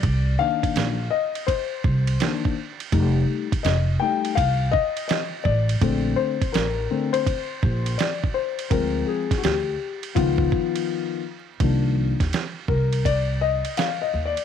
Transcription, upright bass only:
X:1
M:4/4
L:1/16
Q:"Swing 16ths" 1/4=83
K:Cm
V:1 name="Upright bass" clef=bass
C,,2 z2 B,,,2 z4 C,,2 z4 | F,,,2 z2 F,,,2 z2 C,,2 z4 =A,,,2 | B,,,2 z2 =A,,,2 z4 B,,,2 z4 | D,,2 z2 D,,2 z2 _D,,2 z6 |
C,,3 E,, z2 C,,4- C,, z3 E,, z |]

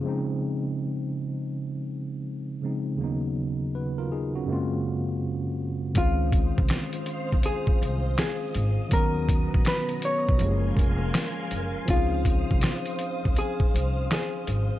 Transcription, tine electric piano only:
X:1
M:4/4
L:1/16
Q:"Swing 16ths" 1/4=81
K:Db
V:1 name="Tine electric piano"
z16 | z4 [G_c] [FB] [EA] [DG]2 z6 z | z16 | z16 |
z16 |]
V:2 name="Tine electric piano"
[D,F,A,CE]12- [D,F,A,CE]2 [D,F,A,CE]2 | [E,,D,G,B,_CE]8 [G,,D,A,B,=CF]8 | [E,A,CDF]16 | [E,G,_CDG]8 [F,A,B,D=GA]8 |
[F,CDEA]16 |]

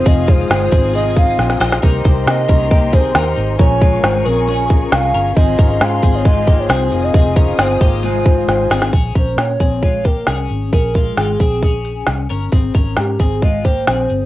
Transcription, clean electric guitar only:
X:1
M:4/4
L:1/8
Q:1/4=135
K:Bbdor
V:1 name="Clean electric guitar"
[CA] [A,F] [A,F] [CA] [CA]3 [Ec] | [EB] [Ec]2 [DB] [B,G] [CA] [EB]2 | [DB] [A,F] [A,F] [CA] [DA]3 [DB] | [CA] [DB]2 [CA] [A,F] [B,G] [CA]2 |
[CA] [DB] [CA] [B,G] [A,F]3 [CA] | [DA] [DB]2 [CA] [A,F] [B,G] [DA]2 | [DA] [A,F] [A,F] [CA] [DA]3 [DB] | [CA] [DB]2 [CA] [A,F] [B,G] [CA]2 |]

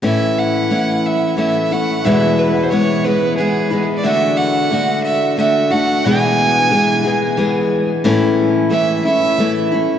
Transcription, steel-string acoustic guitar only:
X:1
M:3/4
L:1/8
Q:1/4=90
K:A
V:1 name="Steel-string acoustic guitar"
[A,,E,A,CE]2 [E,A,CE]2 [E,A,CE] [A,CE] | [E,,B,,E,G,B,E]2 [E,G,B,E] [E,G,B,E] [E,G,B,E] [E,G,B,E] | [D,A,DF]2 [D,A,DF]2 [D,A,DF] [A,DF] | [E,,B,,E,G,B,G]2 [E,G,B,G] [E,G,B,G] [E,G,B,G]2 |
[A,,E,A,CE]2 [E,A,CE] [A,CE] [E,A,CE] [A,CE] |]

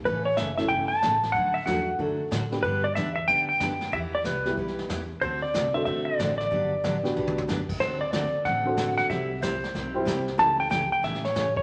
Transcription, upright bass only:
X:1
M:4/4
L:1/8
Q:"Swing" 1/4=186
K:Dmix
V:1 name="Upright bass" clef=bass
A,,,2 F,,,2 G,,,2 A,,,2 | D,,2 E,,2 F,,2 A,,2 | G,,2 E,,2 D,,2 F,,2 | E,,2 C,,2 B,,,2 E,,2 |
D,,2 C,,2 B,,,2 A,,,2 | G,,,2 A,,,2 B,,,2 F,,2 | D,,4 A,,,4 | C,,4 B,,,2 C,,2 |
^C,,4 A,,4 |]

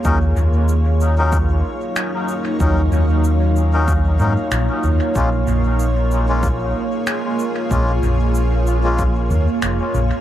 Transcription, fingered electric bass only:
X:1
M:4/4
L:1/8
Q:"Swing 16ths" 1/4=94
K:Bbm
V:1 name="Fingered electric bass" clef=bass
E,, E,,4 z3 | E,, E,,4 A,, B,,, E,, | B,,, B,,,4 z3 | B,,, B,,,4 E,, F,,, B,,, |]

